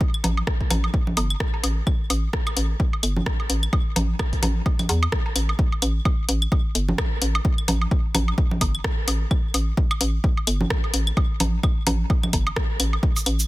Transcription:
0.01 kick
0.14 claves
0.24 A1, open hi-hat, low conga, low woodblock
0.37 high woodblock
0.47 kick, cross-stick
0.61 kick
0.70 A1, open hi-hat, low conga, claves, low woodblock
0.84 high woodblock
0.94 kick
1.07 low conga
1.17 G1, open hi-hat, high woodblock, low woodblock
1.30 claves
1.40 kick, cross-stick
1.54 low woodblock
1.63 A1, open hi-hat, high woodblock
1.87 kick, claves
2.10 A1, open hi-hat, high woodblock
2.33 kick, cross-stick
2.47 claves, high woodblock
2.57 A1, open hi-hat
2.80 kick
2.93 high woodblock
3.03 G1, open hi-hat, claves
3.17 low conga
3.26 kick, cross-stick
3.40 high woodblock
3.49 A1, open hi-hat
3.63 claves
3.73 kick, high woodblock
3.96 A1, open hi-hat, low conga, low woodblock
4.19 kick, cross-stick, claves, high woodblock
4.33 kick, open hi-hat
4.43 A1, open hi-hat, low conga, low woodblock
4.66 kick, high woodblock
4.79 open hi-hat, low conga, claves
4.89 E2, open hi-hat, low woodblock
5.03 high woodblock
5.12 kick, cross-stick
5.26 low woodblock
5.36 A1, open hi-hat, claves
5.49 high woodblock
5.59 kick
5.72 high woodblock
5.82 A1, open hi-hat, claves
6.05 kick, high woodblock
6.29 A1, open hi-hat
6.42 claves
6.52 kick, high woodblock
6.75 G1, open hi-hat
6.89 low conga
6.98 kick, cross-stick, claves, high woodblock
7.22 A1, open hi-hat
7.35 high woodblock
7.45 kick
7.58 claves
7.68 A1, open hi-hat, low conga, low woodblock
7.81 high woodblock
7.91 kick
8.15 A1, open hi-hat, low conga, claves, low woodblock
8.28 high woodblock
8.38 kick
8.51 low conga
8.61 G1, kick, open hi-hat, high woodblock, low woodblock
8.75 claves
8.84 kick, cross-stick
9.08 A1, open hi-hat, high woodblock
9.31 kick, claves
9.54 A1, open hi-hat, high woodblock
9.77 kick
9.91 claves, high woodblock
10.01 A1, open hi-hat
10.24 kick
10.37 high woodblock
10.47 G1, open hi-hat, claves
10.61 low conga
10.70 kick, cross-stick
10.84 high woodblock
10.94 A1, open hi-hat
11.07 claves
11.17 kick, high woodblock
11.40 A1, open hi-hat, low conga, low woodblock
11.63 kick, claves, high woodblock
11.87 A1, open hi-hat, low conga, low woodblock
12.10 kick, high woodblock
12.23 low conga, claves
12.33 G1, kick, open hi-hat, low woodblock
12.47 high woodblock
12.56 kick, cross-stick
12.80 A1, open hi-hat, claves
12.93 high woodblock
13.03 kick
13.16 cabasa, high woodblock
13.26 A1, open hi-hat, claves
13.40 cabasa

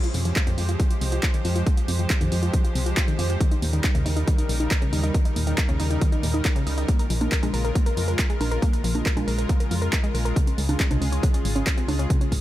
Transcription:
0.04 F3 G#3 F4 G4 C5, closed hi-hat
0.14 F2 C3, open hi-hat
0.25 F3 G#3 G4 C5, closed hi-hat
0.36 F4, kick, clap, closed hi-hat
0.47 F2 D#3 F3 G#3 G4 C5, closed hi-hat
0.58 F2 F4, open hi-hat
0.69 F3 G#3 F4 G4 C5, closed hi-hat
0.80 F3, kick, closed hi-hat
0.90 F3 G#3 F4 G4 C5, closed hi-hat
1.01 C2 C3, open hi-hat
1.12 F3 G#3 F4 G4 C5, closed hi-hat
1.23 F4, kick, clap, closed hi-hat
1.34 D#3 F3 G#3 G4 C5, closed hi-hat
1.45 F2 F4, open hi-hat
1.56 F3 G#3 F4 G4 C5, closed hi-hat
1.66 F3, kick, closed hi-hat
1.77 F3 G#3 F4 G4 C5, closed hi-hat
1.88 F2 C3, open hi-hat
1.99 F3 G#3 G4 C5, closed hi-hat
2.10 F4, kick, clap, closed hi-hat
2.21 F2 D#3 F3 G#3 G4 C5, closed hi-hat
2.32 F2 F4, open hi-hat
2.43 F3 G#3 F4 G4 C5, closed hi-hat
2.54 F3, kick, closed hi-hat
2.64 F3 G#3 F4 G4 C5, closed hi-hat
2.75 C2 C3, open hi-hat
2.86 F3 G#3 F4 G4 C5, closed hi-hat
2.97 F4, kick, clap, closed hi-hat
3.08 D#3 F3 G#3 G4 C5, closed hi-hat
3.19 F2 F4, open hi-hat
3.30 F3 G#3 F4 G4 C5, closed hi-hat
3.40 D#3, kick, closed hi-hat
3.51 C#3 G3 D#4 A#4, closed hi-hat
3.62 D#2 A#2, open hi-hat
3.73 C#3 D#3 G3 D#4 A#4, closed hi-hat
3.84 D#4, kick, clap, closed hi-hat
3.95 D#2 C#3 G3 D#4 A#4, closed hi-hat
4.06 D#2 D#4, open hi-hat
4.16 C#3 G3 D#4 A#4, closed hi-hat
4.27 D#3, kick, closed hi-hat
4.38 C#3 G3 D#4 A#4, closed hi-hat
4.49 A#1 A#2, open hi-hat
4.60 C#3 G3 D#4 A#4, closed hi-hat
4.71 D#4, kick, clap, closed hi-hat
4.82 C#3 G3 D#4 A#4, closed hi-hat
4.93 D#2 D#4, open hi-hat
5.04 C#3 G3 D#4 A#4, closed hi-hat
5.14 D#3, kick, closed hi-hat
5.25 C#3 G3 D#4 A#4, closed hi-hat
5.36 D#2 A#2, open hi-hat
5.47 C#3 D#3 G3 D#4 A#4, closed hi-hat
5.58 D#4, kick, clap, closed hi-hat
5.69 D#2 C#3 G3 D#4 A#4, closed hi-hat
5.80 D#2 D#4, open hi-hat
5.91 C#3 G3 D#4 A#4, closed hi-hat
6.01 D#3, kick, closed hi-hat
6.12 C#3 G3 D#4 A#4, closed hi-hat
6.23 D#2 A#2, open hi-hat
6.34 C#3 G3 D#4 A#4, closed hi-hat
6.45 D#4, kick, clap, closed hi-hat
6.56 C#3 G3 D#4 A#4, closed hi-hat
6.67 C#2 D#4, open hi-hat
6.77 C#3 G3 D#4 A#4, closed hi-hat
6.88 A#3, kick, closed hi-hat
6.99 C#3 G#3 F4 A#4, closed hi-hat
7.10 A#1 F3, open hi-hat
7.21 C#3 G#3 A#3 F4 A#4, closed hi-hat, high conga
7.32 A#4, kick, clap, closed hi-hat
7.43 A#1 C#3 G#3 F4 A#4, closed hi-hat, high conga
7.54 A#1 A#4, open hi-hat
7.65 C#3 G#3 F4 A#4, closed hi-hat
7.75 A#3, kick, closed hi-hat
7.86 C#3 G#3 F4 A#4, closed hi-hat
7.97 F2 F3, open hi-hat
8.08 C#3 G#3 F4 A#4, closed hi-hat
8.19 A#4, kick, clap, closed hi-hat
8.30 C#3 G#3 F4 A#4, closed hi-hat
8.41 A#1 A#4, open hi-hat, high conga
8.51 C#3 G#3 F4 A#4, closed hi-hat
8.62 A#3, kick, closed hi-hat
8.73 C#3 G#3 F4 A#4, closed hi-hat
8.84 A#1 F3, open hi-hat
8.95 C#3 G#3 A#3 F4 A#4, closed hi-hat, high conga
9.06 A#4, kick, clap, closed hi-hat
9.17 A#1 C#3 G#3 F4 A#4, closed hi-hat, high conga
9.27 A#1 A#4, open hi-hat
9.38 C#3 G#3 F4 A#4, closed hi-hat
9.49 A#3, kick, closed hi-hat
9.60 C#3 G#3 F4 A#4, closed hi-hat
9.71 F2 F3, open hi-hat
9.82 C#3 G#3 F4 A#4, closed hi-hat
9.93 A#4, kick, clap, closed hi-hat
10.04 C#3 G#3 F4 A#4, closed hi-hat
10.14 A#1 A#4, open hi-hat
10.25 C#3 G#3 F4 A#4, closed hi-hat
10.36 C#3, kick, closed hi-hat
10.47 C#3 G#3 C#4 F4 G#4, closed hi-hat
10.58 C#2 G#2, open hi-hat
10.69 C#3 G#3 F4 G#4, closed hi-hat, high conga
10.80 C#4, kick, clap, closed hi-hat
10.90 C#2 C3 C#3 G#3 F4 G#4, closed hi-hat, high conga
11.01 C#2 C#4, open hi-hat
11.12 C#3 G#3 C#4 F4 G#4, closed hi-hat
11.23 C#3, kick, closed hi-hat
11.34 C#3 G#3 C#4 F4 G#4, closed hi-hat
11.45 G#1 G#2, open hi-hat
11.56 C#3 G#3 C#4 F4 G#4, closed hi-hat
11.67 C#4, kick, clap, closed hi-hat
11.77 C3 C#3 G#3 F4 G#4, closed hi-hat
11.88 C#2 C#4, open hi-hat, high conga
11.99 C#3 G#3 C#4 F4 G#4, closed hi-hat
12.10 C#3, kick, closed hi-hat
12.21 C#3 G#3 C#4 F4 G#4, closed hi-hat
12.32 C#2 G#2, kick, open hi-hat

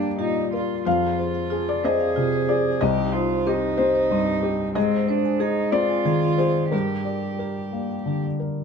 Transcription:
Already playing: G2 A#3 D4 G4 A#4 D5
0.02 G5
0.19 A#2 D#4 G4
0.35 D5
0.53 F4 A#4 D5
0.83 F2 F4 F5
1.02 G#4
1.19 G#4 C5
1.34 F5
1.50 F4 G#4
1.69 D5
1.83 C4 G#4 C5 D#5
2.00 F5
2.16 C3 F4
2.33 C5
2.49 G#4 C5 D5
2.81 C2 C4 G4 D#5
2.98 D#4
3.12 D#4 F4 C5
3.29 C5
3.47 C4 D#4 G4
3.78 C4 G4 C5
3.95 C5
4.11 G2 C4
4.28 G4
4.43 G4
4.75 G#2 C4 G#4 D#5
4.92 C5
5.07 D4 C5
5.25 G#5
5.40 D#4 G#4
5.72 C4 F4 D5 D#5
5.89 G#5
6.05 D#3 G#4
6.38 G#4 C5
6.71 G2 G4 A#4
6.89 A#4
7.05 A#4 D5
7.23 G5
7.39 G4 A#4
7.72 A#3 D5
7.91 G5
8.06 D3 G4
8.24 D5
8.39 A#4 D5

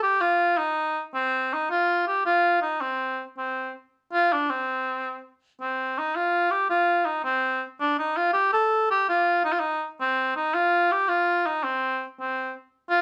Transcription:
0.03 G4
0.21 F4
0.58 D#4
1.14 C4
1.53 D#4
1.70 F4
2.07 G4
2.25 F4
2.62 D#4
2.81 C4
3.38 C4
4.13 F4
4.33 D4
4.50 C4
5.61 C4
5.98 D#4
6.16 F4
6.51 G4
6.70 F4
7.05 D#4
7.24 C4
7.81 D4
7.99 D#4
8.17 F4
8.33 G4
8.53 A4
8.91 G4
9.09 F4
9.44 D#4
9.52 F4
9.60 D#4
10.01 C4
10.36 D#4
10.54 F4
10.92 G4
11.08 F4
11.46 D#4
11.63 C4
12.19 C4
12.90 F4

